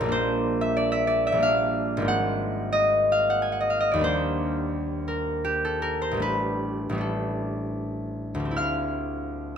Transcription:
Already playing: C#4 A#4 E5
0.01 A#1 G3
0.06 A#3 D4
0.12 C5
0.61 E5
0.77 D5
0.92 E5
1.07 D5
1.27 E5
1.32 A#1 G3
1.37 A#3 D4
1.43 F5
1.97 G#1 G#3
2.02 A#3 C4
2.08 F#5
2.73 D#5
3.12 F5
3.30 F#5
3.42 G#5
3.52 F#5
3.60 D#5
3.70 F5
3.80 D#5
3.92 D#2 D5
3.96 G3 A#3
4.01 D4 C5
5.08 A#4
5.45 G4
5.65 A4
5.82 A#4
6.02 C5
6.11 A1 G3
6.17 A3 D4
6.22 B4
6.89 A1 G3
6.95 A3 D4
7.01 A4
8.35 D2
8.40 G3
8.45 C4
8.51 E4
8.56 F5 F6

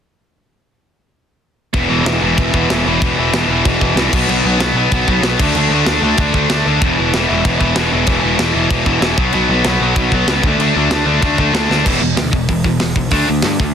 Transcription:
1.73 E1 E2 B2 E3, kick, crash
1.89 E1 E2 B2 E3
2.05 E1 E2 B2 E3, snare, crash
2.21 E1 E2 B2 E3
2.38 E1 E2 B2 E3, kick, crash
2.53 E1 E2 B2 E3, kick
2.70 E1 E2 B2 E3, snare, crash
2.86 E1 E2 B2 E3
3.02 E1 E2 B2 E3, kick, crash
3.17 E1 E2 B2 E3
3.33 E1 E2 B2 E3, snare, crash
3.48 E1 E2 B2 E3
3.65 E1 E2 B2 E3, kick, crash
3.81 E1 E2 B2 E3, kick
3.94 C2 E2, snare, crash
3.99 B2 E3
4.12 B1 B2 F#3 B3, kick, crash
4.28 B1 B2 F#3 B3, crash
4.44 B1 B2 F#3 B3
4.58 B1 F#3 B3, snare, crash
4.63 B2
4.74 B1 B2 F#3 B3
4.91 B1 B2 F#3 B3, kick, crash
5.07 B1 B2 F#3 B3, kick
5.22 B1 B2 F#3 B3, snare, crash
5.39 D2 D3 A3 D4, kick, crash
5.54 D2 D3 A3 D4, crash
5.70 D2 D3 D4
5.74 A3
5.86 D2 D3 A3 D4, snare, crash
6.02 D2 D3 A3 D4
6.18 D2 D3 A3 D4, kick, crash
6.34 D2 D3 A3 D4, kick
6.50 D2 D3 A3 D4, snare, crash
6.66 D2 D3 A3 D4
6.81 E1 E2 B2 E3, kick, crash
6.98 E1 E2 B2 E3
7.13 E1 E2 B2 E3, snare, crash
7.29 E1 E2 B2 E3
7.45 E1 E2 B2 E3, kick, crash
7.59 E1 E2 B2 E3, kick
7.75 E1 E2 B2 E3, snare, crash
7.93 E1 E2 B2 E3
8.07 E1 E2 B2 E3, kick, crash
8.23 E1 E2 B2 E3
8.39 E1 E2 B2 E3, snare, crash
8.54 E1 E2 B2 E3
8.70 E1 E2 B2 E3, kick, crash
8.86 E1 E2 B2 E3, kick
9.01 E1 E2 B2 E3, snare, crash
9.17 B1 B2 F#3 B3, kick
9.33 B1 B2 F#3 B3, crash
9.49 B1 B2 F#3 B3
9.64 B1 B2 F#3 B3, snare, crash
9.80 B1 B2 F#3 B3
9.96 B1 B2 F#3 B3, kick, crash
10.12 B1 B2 F#3 B3, kick
10.27 C#2 B3, snare, crash
10.31 B2 F#3
10.43 D2 D3 A3, kick
10.47 D4
10.58 D2 D3 A3 D4, crash
10.76 D2 D3 A3 D4
10.91 D2 D3 A3 D4, snare, crash
11.06 D2 D3 A3 D4
11.22 D2 D3 A3 D4, kick, crash
11.38 D2 D3 A3 D4, kick
11.53 D2 D3 A3 D4, snare, crash
11.70 D2 D3 A3 D4, snare
11.85 E1 E2 B2 E3, kick, crash
12.00 E1 E2 B2
12.17 D2 E2 B2, snare, open hi-hat
12.32 E1 E2 B2, kick
12.49 E1 E2 B2, kick, open hi-hat
12.64 E1 E2 B2, kick
12.80 E1 E2 B2, snare, open hi-hat
12.96 B1 E2 B2, kick
13.11 D2 D3 A3 D4, kick, open hi-hat
13.28 D2 D3 A3
13.42 G2 D3 A3, snare, open hi-hat
13.60 D2 D3 A3, kick

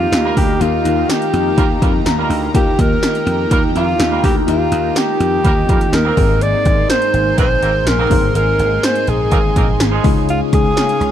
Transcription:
Already playing: D#3 A#3 D#4 F4 G4 A#4 F5 A#5
0.12 D#2, snare, closed hi-hat, tambourine
0.24 G3 A#3 F4 A#4
0.37 D2 G4, kick, open hi-hat
0.60 D#2 D#3 A#3 D#4 F4 G4 A#4, closed hi-hat
0.85 D#2, closed hi-hat
1.08 D#3 A#3 D#4 G4, snare, closed hi-hat, tambourine
1.22 closed hi-hat
1.33 F2, closed hi-hat
1.56 D#2 D#3 G3 A#3 F4 A#4, kick, closed hi-hat
1.63 D#4
1.82 F2 G3 A#3 F4 A#4, kick, closed hi-hat
2.05 D#2 A#5, snare, closed hi-hat, tambourine
2.18 G3 A#3 F4 A#4
2.30 D2, open hi-hat
2.54 D#2 D#3 A#3 D#4 F4 G4 A#4 G5, kick, closed hi-hat
2.79 D#2 A#4, kick, closed hi-hat
3.02 D#3 A#3 D#4, snare, closed hi-hat, tambourine
3.15 closed hi-hat
3.26 F2, closed hi-hat
3.49 D#2 D#3 G3 A#3 F4 A#4, kick, closed hi-hat
3.56 D#4
3.75 F2 G3 A#3 F4 A#4, closed hi-hat
4.00 D#2, snare, closed hi-hat, tambourine
4.11 G3 A#3 F4 A#4
4.24 D2 G4, kick, open hi-hat
4.46 D#2 D#3 A#3 D#4 F4 G4 A#4, closed hi-hat
4.72 D#2, closed hi-hat
4.95 D#3 A#3 D#4 G4, snare, closed hi-hat, tambourine
5.20 F2, closed hi-hat
5.44 D#2 D#3 G3 A#3 D#4 F4 A#4, kick, closed hi-hat
5.69 F2 G3 A#3 F4 A#4, kick, closed hi-hat
5.81 closed hi-hat
5.92 D#2 A#4, snare, closed hi-hat, tambourine
6.05 D#3 A#3 C4 A#4
6.16 G#1 G#2 G#3 A#3 C4 D#4 G#4 A#4 G#5 C6, kick, open hi-hat
6.41 D5, closed hi-hat
6.65 G#1, kick, closed hi-hat
6.89 G#3 D#4 G#4 C5, snare, closed hi-hat, tambourine
7.02 closed hi-hat
7.14 G#1, closed hi-hat
7.36 A#1 D#3 G#3 A#3 C4 D#4 A#4 C5, kick, closed hi-hat
7.43 G#4
7.62 G#1 D#3 A#3 C4 A#4, closed hi-hat
7.87 A#1 A#4, snare, closed hi-hat, tambourine
7.99 D#3 A#3 C4 A#4
8.10 G1 G#2 A#3 C4 D#4 G#4 C5, kick, open hi-hat
8.35 G#1 G#3 D#4 G#4 A#4, closed hi-hat
8.59 G#1, closed hi-hat
8.83 G#3 D#4 G#4 C5, snare, closed hi-hat, tambourine
8.96 closed hi-hat
9.07 A#1 G#4, closed hi-hat
9.31 G#1 D#3 G#3 A#3 C4 D#4 G#4 A#4, kick, closed hi-hat
9.56 A#1 D#3 A#3 C4 A#4, kick, closed hi-hat
9.80 G#1, snare, closed hi-hat, tambourine
9.92 F3 G#3 D#4 G#4
10.03 C#2 C#3 G#3 C#4 D#4 F4 G#4 C#5 F5 D#6, kick, open hi-hat
10.29 F4, closed hi-hat
10.53 C#2 G#4, kick, closed hi-hat
10.76 C#3 G#3 C#4, snare, closed hi-hat, tambourine
10.89 closed hi-hat
11.01 C#2, closed hi-hat

